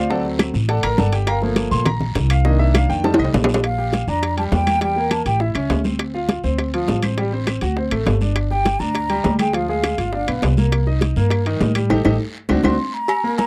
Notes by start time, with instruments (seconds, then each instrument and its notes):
Already playing: upright bass D2, grand piano C5
0.10 grand piano F#3 A3 C4 A4 D5 F#5 A5, high bongo, high conga, long guiro
0.25 high bongo, high conga
0.39 high bongo, high conga, high timbale, short guiro, claves
0.54 upright bass A1, high bongo, high conga, short guiro
0.69 grand piano A4 D5 F#5 A5, high bongo, high conga, high timbale, long guiro
0.83 upright bass A1, grand piano A#4 A#5, high conga, high timbale, claves
0.98 upright bass G1, grand piano A4 D5 F#5 A5, high bongo, low bongo, high conga, short guiro
1.12 grand piano G4 G5, high bongo, high conga, high timbale, short guiro
1.27 grand piano A#4 F5 G5 A#5, high bongo, high conga, high timbale, long guiro, claves
1.41 grand piano F3 A3 A#3, high bongo, high conga
1.56 high bongo, high conga, high timbale, short guiro
1.71 upright bass A#1, grand piano C6, high bongo, high conga, short guiro
1.86 grand piano A#5, high bongo, high conga, low conga, high timbale, long guiro, claves
2.01 high conga, low conga
2.15 upright bass C2, high bongo, low bongo, high conga, high timbale, short guiro
2.30 grand piano F5, high bongo, high conga, high timbale, short guiro, claves
2.45 grand piano D#3 A#3 D4 D#5, high bongo, high conga, long guiro
2.59 grand piano E5, high bongo, high conga
2.74 grand piano F5, high bongo, high conga, high timbale, short guiro, claves
2.89 upright bass F2, grand piano G5, high bongo, high conga, short guiro
3.04 grand piano G3 A3 D#4 A5, high bongo, high conga, high timbale, long guiro
3.14 high bongo, high timbale
3.19 upright bass C2, grand piano D#5, high conga, claves
3.25 high timbale
3.34 upright bass A#1, low bongo, high conga, low timbale, short guiro
3.44 low bongo, low timbale
3.49 high conga, short guiro
3.54 low bongo, low timbale
3.63 flute F5, high bongo, high conga, high timbale, long guiro, claves
3.78 grand piano G4 G5, high bongo, high conga
3.93 high bongo, high conga, high timbale, low timbale, short guiro
4.07 upright bass F2, grand piano D4 D5, flute A#5, high bongo, high conga, short guiro
4.23 high bongo, high conga, high timbale, long guiro, claves
4.37 grand piano G3 G4, flute A5, high bongo, high conga, high timbale
4.52 upright bass E2, flute G5, high bongo, low bongo, high conga, low timbale, short guiro
4.67 grand piano A#3 A#4, high conga, high timbale, short guiro, claves
4.81 grand piano G3 G4, flute G5, high bongo, high conga, high timbale, long guiro
4.96 grand piano A#3 A#4, high bongo, high conga
5.11 flute A5, high bongo, high conga, high timbale, low timbale, short guiro, claves
5.25 upright bass A1, grand piano G4 G5, flute G5, high bongo, high conga, high timbale, short guiro
5.40 grand piano E4 E5, flute E5, high bongo, high conga, long guiro
5.55 upright bass C#2, grand piano C#4 C#5, flute E5, high bongo, high conga, high timbale, claves
5.70 upright bass D2, high bongo, low bongo, high conga, high timbale, low timbale, short guiro
5.84 grand piano C4 C5, high conga, short guiro
5.99 high bongo, high timbale, long guiro, claves
6.14 grand piano F4 F5, high bongo, high conga
6.29 high bongo, high conga, high timbale, low timbale, short guiro
6.43 upright bass D2, grand piano C4 C5, high bongo, high conga, short guiro
6.58 high bongo, high conga, high timbale, long guiro, claves
6.73 grand piano F3 F4, high bongo, high conga, high timbale
6.88 upright bass A1, high bongo, low bongo, high conga, low timbale, short guiro
7.03 grand piano C4 C5, high conga, high timbale, short guiro, claves
7.18 grand piano G3 G4, high bongo, high conga, high timbale, long guiro
7.32 grand piano C4 C5, high bongo, high conga
7.47 high bongo, high conga, high timbale, low timbale, short guiro, claves
7.61 upright bass D2, grand piano F#4 F#5, high bongo, high conga, high timbale, short guiro
7.77 grand piano C4 C5, high bongo, high conga, long guiro
7.91 upright bass A1, grand piano A3 A4, high bongo, high conga, high timbale, claves
8.06 upright bass G1, high bongo, low bongo, high conga, high timbale, low timbale, short guiro
8.21 grand piano D4 D5, high conga, short guiro
8.36 high bongo, high conga, high timbale, long guiro, claves
8.51 grand piano G4 G5, flute G5, high bongo, high conga
8.65 high bongo, high conga, high timbale, low timbale, short guiro
8.80 upright bass D2, grand piano D4 D5, flute A#5, high bongo, high conga, short guiro
8.94 high bongo, high conga, high timbale, long guiro, claves
9.10 grand piano G3 G4, high bongo, high conga, high timbale
9.24 upright bass D2, high bongo, low bongo, high conga, low timbale, short guiro
9.39 grand piano G#3 G#4, flute G5, high conga, high timbale, short guiro, claves
9.53 grand piano F3 F4, flute F5, high bongo, high conga, high timbale, long guiro
9.68 grand piano G#3 G#4, flute F5, high bongo, high conga
9.83 high bongo, high conga, high timbale, low timbale, short guiro, claves
9.98 upright bass G1, grand piano F4 F5, high bongo, high conga, high timbale, short guiro
10.13 grand piano D4 D5, high bongo, high conga, long guiro
10.27 upright bass B1, grand piano B3 B4, high bongo, high conga, high timbale, claves
10.42 upright bass C2, high bongo, low bongo, high conga, high timbale, low timbale, short guiro
10.57 grand piano A#3 A#4, high conga, short guiro
10.72 high bongo, high timbale, long guiro, claves
10.86 grand piano D#4 D#5, high bongo, high conga
11.01 high bongo, high conga, high timbale, low timbale, short guiro
11.16 upright bass G2, grand piano A#3 A#4, high bongo, high conga, short guiro
11.30 high bongo, high conga, high timbale, long guiro, claves
11.46 grand piano D#3 D#4, high bongo, high conga, high timbale
11.60 upright bass A2, high bongo, low bongo, high conga, low timbale, short guiro
11.75 grand piano G3 G4, high conga, high timbale, short guiro, claves
11.90 upright bass A1, grand piano D#4 G4 A4, low bongo, high conga, high timbale, long guiro, claves
12.05 upright bass A1, grand piano D#4 G4 A4, low bongo, high conga, high timbale, long guiro, claves
12.49 upright bass D2, grand piano C4 D4 F#4, low bongo, high conga, high timbale, long guiro, claves
12.64 upright bass D2, grand piano C4 D4 F#4, flute C6, low bongo, high conga, high timbale, long guiro, claves
12.94 flute A#5
13.08 cowbell, high conga, low agogo, long guiro, claves
13.24 grand piano A#3 A#4 A#5, high conga
13.38 flute A#5, cowbell, high conga, low agogo, short guiro